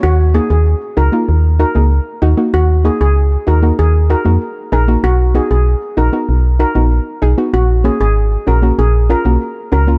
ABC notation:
X:1
M:4/4
L:1/16
Q:1/4=96
K:Ebm
V:1 name="Steel pan"
G z A A z2 B z3 B z4 z | G z A A z2 B z A z B z3 B z | ^F z A A z2 B z3 B z4 z | G z A A z2 B z A z B z3 B z |]
V:2 name="Synth pluck"
z2 [B,EG] z3 [EG] [B,EF] z2 [EG] [B,EA] z2 [EG] [B,EG] | z2 [B,EG] z3 [EG] [B,EG] z2 [EG] [B,EG] z2 [EA] [B,EG] | z2 [=B,^D^F] z3 [DF] [B,DF] z2 [DF] [B,DF] z2 [DA] [B,DF] | z2 [B,DG] z3 [DG] [B,DG] z2 [DF] [B,DG] z2 [DG] [B,DF] |]
V:3 name="FM bass" clef=bass
E,,3 E,,2 z D,, z E,,3 D,,2 z E,, z | E,,3 D,,3 E,,2 E,,3 F,, z2 B,,,2 | =B,,,3 B,,,2 z _B,,, z =B,,,3 _B,,,2 z =B,,, z | B,,,3 A,,,3 B,,,2 B,,,3 C,, z2 D,,2 |]